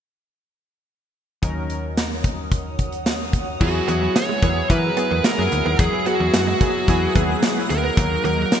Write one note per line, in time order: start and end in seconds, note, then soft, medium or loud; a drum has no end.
1.42 3.57 D#2 medium
1.42 3.56 F#3 medium
1.42 3.57 C#4 medium
1.42 3.57 D#4 medium
1.42 3.58 A#4 medium
1.42 3.59 C#5 medium
1.42 3.58 F#5 medium
1.42 3.59 D#6 medium
1.42 kick loud
1.42 closed hi-hat medium
1.70 closed hi-hat medium
1.97 snare loud
1.97 closed hi-hat medium
2.24 kick medium
2.24 closed hi-hat medium
2.52 kick medium
2.52 closed hi-hat medium
2.79 kick medium
2.79 closed hi-hat medium
2.92 closed hi-hat soft
3.06 snare loud
3.06 closed hi-hat medium
3.33 kick medium
3.33 closed hi-hat medium
3.60 3.81 E2 loud
3.60 3.82 F#3 medium
3.60 3.82 B3 medium
3.60 3.83 E4 medium
3.60 4.17 F#4 medium
3.60 7.93 G#4 medium
3.60 3.83 G#4 medium
3.60 7.93 F#5 medium
3.60 5.77 E6 medium
3.60 kick loud
3.60 crash medium
3.75 muted clean electric guitar stroke soft
3.88 4.09 E2 loud
3.88 4.31 F#3 medium
3.88 4.00 B3 medium
3.88 4.31 B3 medium
3.88 4.32 E4 medium
3.88 4.32 G#4 medium
3.88 closed hi-hat medium
4.02 4.13 F#3 medium
4.16 4.67 C#5 loud
4.16 muted clean electric guitar stroke soft
4.16 snare loud
4.16 closed hi-hat medium
4.29 4.41 G#3 medium
4.42 4.63 E2 medium
4.42 4.64 F#3 medium
4.42 4.55 A#3 medium
4.42 4.64 B3 medium
4.42 4.64 E4 medium
4.42 4.65 G#4 medium
4.42 kick loud
4.42 closed hi-hat medium
4.69 4.90 E3 loud
4.69 4.91 F#3 medium
4.69 4.92 B3 medium
4.69 4.92 E4 medium
4.69 4.92 A#4 medium
4.69 5.25 B4 medium
4.69 muted clean electric guitar stroke soft
4.69 kick medium
4.69 closed hi-hat medium
4.97 5.30 F#3 medium
4.97 5.09 B3 medium
4.97 5.30 B3 medium
4.97 5.30 E4 medium
4.97 5.30 G#4 medium
4.97 closed hi-hat medium
5.11 5.21 E2 medium
5.11 5.22 A#3 medium
5.24 5.36 G#3 medium
5.24 5.76 A#4 medium
5.24 snare loud
5.24 closed hi-hat medium
5.38 5.49 F#2 medium
5.38 5.70 F#3 medium
5.38 5.71 B3 medium
5.38 5.71 E4 medium
5.38 5.71 G#4 medium
5.52 5.62 D2 medium
5.52 muted clean electric guitar stroke soft
5.52 closed hi-hat medium
5.65 5.76 D#2 medium
5.65 5.77 B3 medium
5.79 5.89 E2 loud
5.79 6.01 F#3 medium
5.79 6.01 B3 medium
5.79 6.01 E4 medium
5.79 6.07 G#4 medium
5.79 6.01 G#4 medium
5.79 7.95 F#6 medium
5.79 kick loud
5.79 closed hi-hat loud
5.93 muted clean electric guitar stroke soft
6.06 6.50 F#3 medium
6.06 6.18 B3 medium
6.06 6.50 B3 medium
6.06 6.50 E4 medium
6.06 7.12 F#4 medium
6.06 6.50 G#4 medium
6.06 closed hi-hat medium
6.20 6.30 E2 medium
6.20 6.32 F#3 medium
6.34 6.54 F#2 medium
6.34 muted clean electric guitar stroke soft
6.34 snare loud
6.34 closed hi-hat medium
6.47 6.59 G#3 medium
6.61 6.83 F#3 medium
6.61 6.73 A#3 medium
6.61 6.83 B3 medium
6.61 6.83 E4 medium
6.61 6.83 G#4 medium
6.61 kick loud
6.61 closed hi-hat medium
6.88 7.09 E2 loud
6.88 7.10 F#3 medium
6.88 7.10 B3 medium
6.88 7.10 E4 medium
6.88 7.10 G#4 loud
6.88 muted clean electric guitar stroke soft
6.88 kick medium
6.88 closed hi-hat medium
7.15 7.36 D#2 medium
7.15 7.48 F#3 medium
7.15 7.48 B3 medium
7.15 7.27 B3 medium
7.15 7.48 E4 medium
7.15 7.49 G#4 medium
7.15 kick medium
7.15 closed hi-hat medium
7.29 7.41 A#3 medium
7.43 7.54 G#3 medium
7.43 snare loud
7.43 closed hi-hat medium
7.56 7.89 F#3 medium
7.56 7.89 B3 medium
7.56 7.89 E4 medium
7.56 7.90 G#4 medium
7.70 7.91 D2 medium
7.70 8.24 A#4 medium
7.70 muted clean electric guitar stroke soft
7.70 closed hi-hat medium
7.84 7.95 B3 medium
7.97 8.18 D#2 loud
7.97 8.19 F#3 medium
7.97 8.19 A#3 medium
7.97 8.19 D#4 medium
7.97 8.60 A#4 medium
7.97 8.20 A#4 medium
7.97 8.60 F#5 medium
7.97 8.60 D#6 medium
7.97 kick loud
7.97 closed hi-hat loud
8.11 muted clean electric guitar stroke soft
8.25 8.45 D#2 medium
8.25 8.60 F#3 medium
8.25 8.36 A#3 medium
8.25 8.60 A#3 medium
8.25 8.60 D#4 medium
8.25 8.60 A#4 medium
8.25 closed hi-hat medium
8.38 8.50 F#3 medium
8.52 muted clean electric guitar stroke soft
8.52 snare loud
8.52 closed hi-hat medium